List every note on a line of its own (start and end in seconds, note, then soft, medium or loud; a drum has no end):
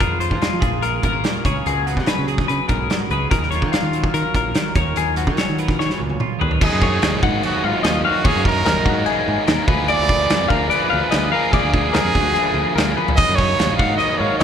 0.00 0.33 F2 medium
0.00 0.60 F3 medium
0.00 0.60 G#4 medium
0.00 0.20 A#4 medium
0.00 kick loud
0.00 closed hi-hat medium
0.20 0.60 F4 medium
0.20 0.42 C5 medium
0.20 closed hi-hat medium
0.31 0.40 F3 medium
0.31 kick medium
0.41 0.60 D#4 medium
0.41 0.84 F4 medium
0.41 snare loud
0.41 closed hi-hat medium
0.53 0.62 F3 medium
0.60 0.98 A#1 medium
0.60 1.42 A#2 medium
0.60 1.45 G#4 medium
0.60 kick medium
0.60 closed hi-hat medium
0.82 1.43 F4 medium
0.82 1.04 A#4 medium
0.82 closed hi-hat medium
1.02 1.22 G#1 medium
1.02 1.13 B3 medium
1.02 1.45 A#4 medium
1.02 kick medium
1.02 closed hi-hat medium
1.13 1.45 C#4 medium
1.24 1.43 A#3 medium
1.24 snare loud
1.24 closed hi-hat medium
1.45 1.63 C#2 medium
1.45 2.08 C#3 medium
1.45 2.27 G#4 medium
1.45 1.66 C#5 medium
1.45 kick medium
1.45 closed hi-hat medium
1.66 1.98 C#2 medium
1.66 2.90 F#4 medium
1.66 1.87 G#4 loud
1.66 closed hi-hat medium
1.87 3.73 B3 medium
1.87 2.08 F#4 medium
1.87 closed hi-hat medium
1.96 2.06 C#3 medium
1.96 kick medium
1.96 snare soft
2.06 3.94 F#3 medium
2.06 2.27 B4 medium
2.06 snare loud
2.06 closed hi-hat medium
2.18 2.45 C#3 medium
2.27 2.48 G#4 medium
2.27 3.11 G#4 medium
2.27 closed hi-hat medium
2.38 kick medium
2.38 snare soft
2.48 2.59 C#3 loud
2.48 2.68 B4 medium
2.48 closed hi-hat medium
2.68 2.87 B1 medium
2.68 3.11 G#2 medium
2.68 3.11 A#4 medium
2.68 kick medium
2.68 closed hi-hat medium
2.90 3.16 F#4 medium
2.90 snare loud
2.90 closed hi-hat medium
3.10 3.28 C#2 medium
3.10 3.31 C#3 medium
3.10 3.30 G#4 medium
3.10 3.30 B4 medium
3.10 closed hi-hat medium
3.31 3.63 D#2 medium
3.31 4.56 D#3 medium
3.31 3.44 G#4 medium
3.31 3.50 A#4 medium
3.31 kick loud
3.31 closed hi-hat medium
3.43 4.13 A#4 medium
3.43 snare soft
3.51 3.72 C#5 medium
3.51 snare soft
3.51 closed hi-hat medium
3.55 4.80 F4 medium
3.62 3.71 D#3 medium
3.62 kick medium
3.72 3.84 B3 medium
3.72 4.14 F4 medium
3.72 snare loud
3.72 closed hi-hat medium
3.83 4.10 D#3 medium
3.83 4.77 C#4 medium
3.93 5.37 F#3 medium
3.93 closed hi-hat medium
4.04 kick medium
4.14 4.23 D#3 loud
4.14 4.35 A#4 medium
4.14 4.77 A#4 medium
4.14 closed hi-hat medium
4.34 4.53 A#1 medium
4.34 4.76 A#4 medium
4.34 kick medium
4.34 closed hi-hat medium
4.55 4.76 D#3 medium
4.55 snare loud
4.55 closed hi-hat medium
4.75 4.94 D#2 medium
4.75 6.38 D#3 medium
4.75 5.59 A#4 medium
4.75 4.97 C#5 medium
4.75 kick loud
4.75 closed hi-hat medium
4.96 5.28 D#2 medium
4.96 6.19 F4 medium
4.96 5.17 G#4 medium
4.96 closed hi-hat medium
5.16 5.28 B3 medium
5.16 5.38 F#4 medium
5.16 closed hi-hat medium
5.27 5.36 D#3 medium
5.27 6.41 C#4 soft
5.27 kick medium
5.37 8.05 F#3 medium
5.37 5.59 C#5 medium
5.37 snare loud
5.37 closed hi-hat medium
5.49 5.76 D#3 medium
5.58 5.79 A#4 medium
5.58 6.39 B4 medium
5.58 closed hi-hat medium
5.68 kick medium
5.68 snare soft
5.79 5.89 D#3 loud
5.79 6.00 C#5 medium
5.79 snare medium
5.90 snare medium
5.98 6.18 C#2 medium
5.98 6.38 A#2 medium
6.10 high tom medium
6.20 6.39 F4 medium
6.20 mid tom medium
6.39 6.59 D#2 medium
6.39 6.58 D#3 medium
6.39 6.52 G#4 medium
6.39 6.62 B4 medium
6.39 floor tom medium
6.51 6.62 A#4 medium
6.51 floor tom medium
6.61 6.71 D#2 loud
6.61 8.23 D#3 loud
6.61 8.24 F#3 loud
6.61 8.25 A#3 loud
6.61 8.25 D#4 loud
6.61 7.20 G#4 loud
6.61 6.83 D#5 loud
6.61 kick loud
6.61 crash loud
6.61 crash medium
6.73 6.99 F#2 loud
6.82 7.23 C#5 medium
6.82 kick medium
7.02 7.12 D#2 medium
7.02 snare loud
7.02 crash medium
7.13 7.22 A#1 medium
7.23 7.41 G#2 medium
7.23 7.43 F#5 medium
7.23 kick loud
7.43 7.67 F#4 medium
7.43 7.64 D#5 medium
7.43 crash medium
7.64 7.73 G#2 medium
7.64 8.04 F4 loud
7.64 7.83 F5 medium
7.83 8.02 D#2 medium
7.83 8.04 D#5 medium
7.83 snare loud
7.83 crash medium
8.04 8.27 F#4 loud
8.04 8.24 F5 medium
8.24 8.34 D#2 loud
8.24 9.67 D#3 medium
8.24 9.67 F#3 medium
8.24 9.68 A#3 loud
8.24 9.68 D#4 loud
8.24 8.46 G#4 loud
8.24 8.66 C#5 loud
8.24 kick loud
8.24 crash medium
8.35 8.62 F#2 loud
8.45 9.04 A#4 loud
8.45 kick medium
8.65 8.75 D#2 medium
8.65 8.87 A#4 medium
8.65 snare loud
8.65 crash medium
8.77 8.85 A#1 medium
8.85 9.04 G#2 medium
8.85 9.07 F#4 medium
8.85 kick medium
9.06 9.47 G#4 medium
9.06 crash medium
9.28 9.37 G#2 loud
9.47 9.57 D#2 medium
9.47 9.68 A#4 medium
9.47 snare loud
9.47 crash medium
9.68 9.95 D2 loud
9.68 11.31 D3 medium
9.68 11.34 F3 medium
9.68 11.34 A#3 loud
9.68 11.34 F4 loud
9.68 11.35 G#4 loud
9.68 9.89 B4 medium
9.68 kick loud
9.88 10.09 D5 loud
9.88 10.51 D5 loud
9.88 crash medium
9.99 10.26 D2 loud
10.09 10.48 B4 medium
10.09 kick loud
10.30 10.39 D2 medium
10.30 snare loud
10.30 crash medium
10.40 10.49 F2 medium
10.48 10.68 D2 medium
10.48 10.72 A#4 loud
10.48 10.69 F5 medium
10.48 kick medium
10.70 11.34 B4 loud
10.70 10.89 D5 medium
10.70 crash medium
10.90 11.02 D2 loud
10.90 11.10 F5 medium
11.11 11.31 D2 medium
11.11 11.31 D#5 medium
11.11 snare loud
11.11 crash medium
11.32 12.96 D3 medium
11.32 13.18 F3 loud
11.32 13.18 A#3 loud
11.32 13.19 F4 loud
11.32 13.21 G#4 loud
11.32 11.53 A#4 loud
11.32 11.53 F5 medium
11.52 11.62 D2 loud
11.52 11.72 G#4 loud
11.52 11.95 D5 medium
11.52 kick loud
11.52 crash medium
11.64 11.90 D2 medium
11.73 12.92 G#4 loud
11.73 kick medium
11.93 12.03 D2 loud
11.93 12.14 A#4 medium
11.93 snare loud
11.93 crash medium
12.04 12.13 F2 medium
12.15 12.33 D2 medium
12.15 12.36 F#4 medium
12.15 kick medium
12.34 12.75 G#4 medium
12.34 crash medium
12.54 12.64 D2 loud
12.76 12.94 D2 medium
12.76 12.97 A#4 medium
12.76 snare loud
12.76 crash medium
12.97 13.18 B4 medium
12.97 high tom medium
13.08 floor tom loud
13.15 13.27 D#2 loud
13.15 14.44 D#3 medium
13.15 14.44 F#3 medium
13.15 14.44 A#3 loud
13.15 13.37 D#5 loud
13.15 13.38 D#5 loud
13.15 kick loud
13.15 crash medium
13.20 14.44 D#4 loud
13.28 13.55 F#2 loud
13.36 13.76 C#5 loud
13.36 13.79 C#5 medium
13.36 kick medium
13.59 13.68 D#2 medium
13.59 snare loud
13.59 crash medium
13.69 13.78 A#1 medium
13.77 13.97 G#2 medium
13.77 13.96 F5 loud
13.77 13.98 F#5 medium
13.77 kick medium
13.97 14.19 D#5 loud
13.97 14.20 D#5 medium
13.97 crash medium
14.17 14.29 G#2 medium
14.17 14.38 C#5 loud
14.17 14.40 F5 medium
14.38 14.44 D#2 medium
14.38 14.44 C#5 loud
14.38 14.44 D#5 medium
14.38 crash medium